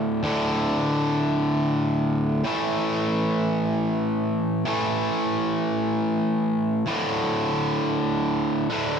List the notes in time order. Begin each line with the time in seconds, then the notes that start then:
Already playing: D2 A2 D3
0.23 D2 A2 D3
2.44 A2 E3 A3
4.66 A2 E3 A3
6.86 D2 A2 D3
8.70 D2 A2 D3